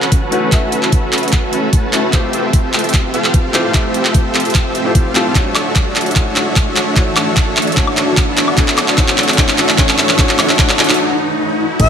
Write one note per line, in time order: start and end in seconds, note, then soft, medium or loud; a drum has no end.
0.00 2.10 E3 medium
0.00 0.29 A3 medium
0.00 8.53 A3 medium
0.00 0.29 C#4 medium
0.00 0.50 C#4 medium
0.00 2.10 C#4 medium
0.00 0.30 E4 medium
0.00 0.30 F#4 medium
0.00 0.50 F#4 medium
0.00 2.10 F#4 medium
0.00 0.50 A4 medium
0.00 0.31 B4 medium
0.00 0.50 B4 medium
0.00 2.10 B4 medium
0.00 0.50 F#5 medium
0.00 clap soft
0.00 riser medium
0.12 kick medium
0.12 closed hi-hat medium
0.31 0.49 A3 medium
0.31 0.50 C#4 medium
0.31 0.50 E4 medium
0.31 0.50 F#4 medium
0.31 0.50 B4 loud
0.31 closed hi-hat medium
0.51 0.63 A3 medium
0.51 0.63 C#4 medium
0.51 1.71 C#4 medium
0.51 0.64 E4 medium
0.51 1.71 F#4 medium
0.51 0.64 F#4 medium
0.51 1.71 A4 medium
0.51 1.71 E5 medium
0.51 0.64 E5 medium
0.51 kick loud
0.51 clap medium
0.51 closed hi-hat medium
0.72 closed hi-hat medium
0.83 clap soft
0.92 kick loud
0.92 closed hi-hat medium
1.13 clap medium
1.13 closed hi-hat soft
1.18 closed hi-hat medium
1.23 closed hi-hat soft
1.28 closed hi-hat medium
1.33 kick medium
1.33 clap medium
1.33 closed hi-hat medium
1.53 closed hi-hat medium
1.73 2.11 F#4 medium
1.73 2.11 B4 medium
1.73 kick medium
1.73 closed hi-hat medium
1.92 2.10 A3 medium
1.92 2.11 C#4 medium
1.92 2.11 E4 medium
1.92 2.11 F#4 medium
1.92 2.11 E5 medium
1.92 clap medium
1.92 closed hi-hat medium
2.11 5.32 A2 medium
2.11 5.32 F3 medium
2.11 3.51 A3 medium
2.11 3.12 C4 medium
2.11 3.12 F4 medium
2.11 3.52 F4 medium
2.11 3.12 G4 medium
2.11 5.32 G4 medium
2.11 3.52 G4 medium
2.11 3.12 A4 medium
2.11 5.32 C5 medium
2.11 3.53 C5 medium
2.11 3.12 E5 medium
2.11 kick loud
2.11 clap medium
2.11 closed hi-hat medium
2.33 closed hi-hat medium
2.53 kick loud
2.53 closed hi-hat medium
2.74 clap medium
2.74 closed hi-hat soft
2.79 closed hi-hat medium
2.84 closed hi-hat soft
2.89 closed hi-hat medium
2.94 kick medium
2.94 clap medium
2.94 closed hi-hat medium
3.14 3.72 C4 medium
3.14 3.72 F4 medium
3.14 3.72 G4 medium
3.14 3.72 A4 medium
3.14 3.72 F5 loud
3.14 closed hi-hat medium
3.24 clap medium
3.34 kick medium
3.34 closed hi-hat medium
3.53 3.71 A3 medium
3.53 3.72 E4 medium
3.53 3.72 F4 medium
3.53 3.72 G4 medium
3.53 3.72 C5 loud
3.53 clap medium
3.53 closed hi-hat medium
3.73 3.85 A3 medium
3.73 3.85 E4 medium
3.73 3.86 F4 medium
3.73 3.86 G4 medium
3.73 3.86 E5 medium
3.73 kick loud
3.73 clap medium
3.73 closed hi-hat medium
3.94 closed hi-hat medium
4.05 clap medium
4.14 kick loud
4.14 closed hi-hat medium
4.35 clap medium
4.35 closed hi-hat soft
4.40 closed hi-hat medium
4.45 closed hi-hat soft
4.50 closed hi-hat medium
4.55 kick loud
4.55 clap medium
4.55 closed hi-hat medium
4.75 closed hi-hat medium
4.84 5.12 A3 medium
4.84 5.13 E4 medium
4.84 5.13 F4 medium
4.84 5.13 G4 medium
4.84 5.13 C5 medium
4.95 kick loud
4.95 closed hi-hat medium
5.14 5.26 A3 medium
5.14 5.33 C4 medium
5.14 5.26 E4 medium
5.14 5.33 F4 medium
5.14 5.27 F4 medium
5.14 5.33 G4 medium
5.14 5.27 G4 medium
5.14 5.33 A4 medium
5.14 5.27 A4 loud
5.14 5.33 F5 medium
5.14 clap medium
5.14 closed hi-hat medium
5.33 8.54 E3 medium
5.33 6.12 A3 medium
5.33 6.13 D4 medium
5.33 11.76 D4 medium
5.33 6.14 D4 medium
5.33 6.14 E4 medium
5.33 8.54 F#4 medium
5.33 6.15 F#4 medium
5.33 6.14 A4 medium
5.33 8.54 C#5 medium
5.33 6.14 C#5 medium
5.33 6.15 C#5 medium
5.33 kick loud
5.33 clap medium
5.33 closed hi-hat medium
5.55 clap medium
5.55 closed hi-hat medium
5.55 high woodblock medium
5.75 kick loud
5.75 clap medium
5.75 closed hi-hat medium
5.96 clap medium
5.96 closed hi-hat soft
6.01 closed hi-hat medium
6.06 closed hi-hat soft
6.11 6.93 A3 medium
6.11 6.94 D4 medium
6.11 closed hi-hat medium
6.16 6.95 E4 medium
6.16 6.95 F#4 medium
6.16 6.96 C#5 medium
6.16 kick loud
6.16 clap medium
6.16 closed hi-hat medium
6.36 clap medium
6.36 closed hi-hat medium
6.56 kick loud
6.56 clap medium
6.56 closed hi-hat medium
6.76 clap medium
6.76 closed hi-hat medium
6.94 7.73 A3 medium
6.94 7.74 D4 medium
6.94 7.75 D4 medium
6.94 7.75 E4 medium
6.94 7.75 F#4 medium
6.94 7.76 F#4 medium
6.94 7.75 A4 medium
6.94 7.75 C#5 medium
6.94 7.75 E5 medium
6.94 kick loud
6.94 clap medium
6.94 closed hi-hat medium
6.98 7.76 C#5 medium
7.16 clap medium
7.16 closed hi-hat medium
7.16 high woodblock medium
7.37 kick loud
7.37 clap medium
7.37 closed hi-hat medium
7.57 clap medium
7.57 closed hi-hat soft
7.62 closed hi-hat medium
7.67 closed hi-hat soft
7.72 8.54 A3 medium
7.72 8.55 D4 medium
7.72 closed hi-hat medium
7.77 8.56 D4 medium
7.77 8.56 E4 medium
7.77 8.56 F#4 medium
7.77 8.56 A4 medium
7.77 8.57 C#5 medium
7.77 8.56 E5 medium
7.77 kick loud
7.77 clap medium
7.77 closed hi-hat medium
7.87 high woodblock medium
7.97 clap medium
7.97 closed hi-hat medium
8.17 kick loud
8.17 clap medium
8.17 closed hi-hat medium
8.37 clap medium
8.37 closed hi-hat medium
8.48 high woodblock medium
8.56 11.76 E3 medium
8.56 8.94 A3 medium
8.56 11.76 A3 medium
8.56 8.95 D4 medium
8.56 8.96 D4 medium
8.56 8.96 E4 medium
8.56 11.76 F#4 medium
8.56 8.97 F#4 medium
8.56 11.76 B4 medium
8.56 8.97 C#5 medium
8.56 kick medium
8.56 clap medium
8.56 closed hi-hat medium
8.68 clap medium
8.78 clap medium
8.78 closed hi-hat medium
8.78 high woodblock medium
8.88 clap medium
8.96 9.35 A3 medium
8.96 9.36 D4 medium
8.96 9.37 D4 medium
8.96 9.37 E4 medium
8.96 9.37 F#4 medium
8.96 9.37 A4 medium
8.96 9.37 C#5 medium
8.96 9.37 E5 medium
8.96 kick loud
8.96 clap loud
8.96 closed hi-hat medium
9.08 clap medium
9.18 clap loud
9.18 closed hi-hat soft
9.23 closed hi-hat medium
9.28 clap medium
9.28 closed hi-hat soft
9.33 9.75 A3 medium
9.33 9.76 D4 medium
9.33 closed hi-hat medium
9.38 9.77 D4 medium
9.38 9.77 E4 medium
9.38 9.77 F#4 medium
9.38 9.77 C#5 medium
9.38 9.78 C#5 medium
9.38 9.77 E5 medium
9.38 kick loud
9.38 clap loud
9.38 closed hi-hat medium
9.49 clap medium
9.58 clap medium
9.58 closed hi-hat medium
9.69 clap medium
9.76 10.15 A3 medium
9.76 10.16 D4 medium
9.76 10.17 D4 medium
9.76 10.17 E4 medium
9.76 10.18 F#4 medium
9.76 10.17 C#5 medium
9.76 10.17 E5 medium
9.76 kick medium
9.76 clap loud
9.76 closed hi-hat medium
9.80 10.18 C#5 medium
9.89 clap medium
9.98 clap loud
9.98 closed hi-hat medium
10.09 clap medium
10.17 10.35 A3 medium
10.17 10.36 D4 medium
10.17 10.37 D4 medium
10.17 10.37 E4 medium
10.17 10.37 F#4 medium
10.17 10.38 F#4 medium
10.17 10.37 A4 medium
10.17 10.37 C#5 medium
10.17 10.38 C#5 medium
10.17 10.37 E5 medium
10.17 kick loud
10.17 clap loud
10.17 closed hi-hat medium
10.29 clap medium
10.37 10.55 A3 medium
10.37 10.56 D4 medium
10.37 10.57 D4 medium
10.37 10.57 E4 medium
10.37 10.57 F#4 medium
10.37 10.58 F#4 medium
10.37 10.57 A4 medium
10.37 10.57 C#5 medium
10.37 10.57 E5 medium
10.37 clap loud
10.37 closed hi-hat medium
10.37 high woodblock medium
10.41 10.58 C#5 medium
10.49 clap medium
10.57 10.75 A3 medium
10.57 10.76 D4 medium
10.57 10.77 E4 medium
10.57 10.78 F#4 medium
10.57 kick loud
10.57 clap loud
10.57 closed hi-hat medium
10.61 10.78 C#5 medium
10.69 clap medium
10.77 10.97 A3 medium
10.77 10.97 D4 medium
10.77 10.98 D4 medium
10.77 10.98 E4 medium
10.77 10.98 F#4 medium
10.77 10.98 A4 medium
10.77 10.98 C#5 medium
10.77 10.98 E5 medium
10.77 clap loud
10.77 closed hi-hat medium
10.81 10.99 C#5 medium
10.81 closed hi-hat medium
10.89 clap medium
10.89 closed hi-hat soft
10.94 closed hi-hat medium
11.80 11.89 A1 medium
11.80 11.89 C#4 medium
11.80 11.89 F#4 medium
11.80 11.89 A4 medium
11.80 11.89 B4 medium
11.80 11.89 E5 medium
11.80 kick loud
11.80 closed hi-hat medium
11.80 crash loud
11.80 impact medium